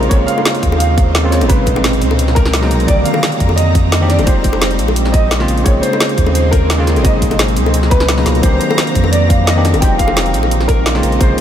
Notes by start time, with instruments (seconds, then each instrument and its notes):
Already playing: grand piano A#4
0.03 closed hi-hat
0.09 sub bass A#1, tine electric piano C#3 G#3 A#3 C4, grand piano C#5, kick, closed hi-hat
0.13 tine electric piano F4
0.26 grand piano F5, closed hi-hat
0.38 high bongo
0.45 snare, closed hi-hat
0.55 closed hi-hat
0.63 sub bass D#2, kick, closed hi-hat
0.72 high bongo
0.78 grand piano F5, closed hi-hat
0.98 kick, closed hi-hat
1.15 snare, closed hi-hat
1.23 tine electric piano C#3 G#3 A#3 C4 F4
1.30 grand piano C#5, snare, closed hi-hat
1.41 sub bass G#1, closed hi-hat, high bongo
1.47 tine electric piano A#2 B2 F#3 G#3, grand piano B4, ambient pad A#5, kick, closed hi-hat
1.52 tine electric piano D#4
1.66 kick, closed hi-hat, high bongo
1.76 high bongo
1.84 snare, closed hi-hat
1.93 closed hi-hat
2.02 sub bass C#2, closed hi-hat
2.11 high bongo
2.19 closed hi-hat
2.28 snare
2.35 grand piano A#4, kick, closed hi-hat
2.46 snare
2.54 snare, closed hi-hat
2.62 tine electric piano B2 F#3 G#3 A#3 D#4, snare
2.71 sub bass B1, closed hi-hat
2.80 closed hi-hat
2.86 sub bass C2, tine electric piano D3 D#3 A#3 C4, grand piano D5, kick, closed hi-hat
2.91 tine electric piano G4
3.04 grand piano F5, closed hi-hat
3.14 high bongo
3.23 snare, closed hi-hat
3.32 closed hi-hat
3.40 sub bass F2, kick, closed hi-hat
3.49 high bongo
3.56 grand piano D#5, closed hi-hat
3.75 kick, closed hi-hat
3.92 snare, closed hi-hat
4.00 tine electric piano D#3 A#3 C4 D4 G4
4.08 grand piano D5, snare, closed hi-hat
4.19 sub bass F1, closed hi-hat, high bongo
4.24 tine electric piano G#3 D#4 F4 G4, grand piano C5, kick, closed hi-hat
4.29 tine electric piano C5
4.44 kick, closed hi-hat
4.53 high bongo
4.62 snare, closed hi-hat
4.71 closed hi-hat
4.79 sub bass A#1, closed hi-hat
4.88 high bongo
4.96 closed hi-hat
5.05 snare
5.12 grand piano D#5, kick, closed hi-hat
5.31 snare, closed hi-hat
5.39 tine electric piano C#3 G#3 A#3 C4 F4, snare
5.48 sub bass A#1, closed hi-hat
5.58 closed hi-hat
5.63 sub bass A#1, tine electric piano C#3 G#3 A#3 C4, grand piano C#5, kick, closed hi-hat
5.68 tine electric piano F4
5.82 grand piano C5, closed hi-hat
5.93 high bongo
6.00 snare, closed hi-hat
6.09 closed hi-hat
6.18 sub bass D#2, kick, closed hi-hat
6.26 high bongo
6.34 grand piano C5, closed hi-hat
6.51 grand piano A#4, kick, closed hi-hat
6.70 snare, closed hi-hat
6.78 tine electric piano C#3 G#3 A#3 C4 F4
6.87 snare, closed hi-hat
6.96 sub bass G#1, closed hi-hat, high bongo
7.02 tine electric piano B2 F#3 G#3 A#3, grand piano D#5, ambient pad A#5, kick, closed hi-hat
7.07 tine electric piano D#4
7.22 kick, closed hi-hat
7.31 closed hi-hat, high bongo
7.39 snare, closed hi-hat
7.48 closed hi-hat
7.57 sub bass C#2, closed hi-hat
7.66 high bongo
7.74 closed hi-hat
7.83 snare
7.90 grand piano B4, kick, closed hi-hat
8.00 snare
8.09 snare, closed hi-hat
8.17 tine electric piano B2 F#3 G#3 A#3 D#4, snare
8.25 sub bass C#2, tine electric piano B2 F#3 G#3 A#3 F4, snare, closed hi-hat
8.35 closed hi-hat
8.41 sub bass C2, tine electric piano D#3 A#3 C4 D4, grand piano C5, kick, closed hi-hat
8.46 tine electric piano G4
8.60 grand piano C5, closed hi-hat
8.70 high bongo
8.78 snare, closed hi-hat
8.87 closed hi-hat
8.95 sub bass F2, kick, closed hi-hat
9.04 high bongo
9.12 grand piano D5, closed hi-hat
9.29 grand piano F5, kick, closed hi-hat
9.46 grand piano D#5, snare, closed hi-hat
9.55 tine electric piano D#3 A#3 C4 D4 G4
9.65 snare, closed hi-hat
9.74 sub bass F1, closed hi-hat, high bongo
9.80 tine electric piano G#3 D#4 F4 G4, grand piano G5, kick, closed hi-hat
9.84 tine electric piano C5
9.98 grand piano F5, kick, closed hi-hat
10.08 high bongo
10.17 snare, closed hi-hat
10.26 closed hi-hat
10.34 sub bass A#1, closed hi-hat
10.43 high bongo
10.51 closed hi-hat
10.61 snare
10.68 grand piano A#4, kick, closed hi-hat
10.86 snare, closed hi-hat
10.94 tine electric piano C#3 G#3 A#3 C4 F4, snare
11.03 sub bass A#1, closed hi-hat
11.12 closed hi-hat
11.18 sub bass A#1, tine electric piano C3 C#3 G#3 A#3, grand piano C5, kick, closed hi-hat
11.23 tine electric piano F4
11.37 grand piano C5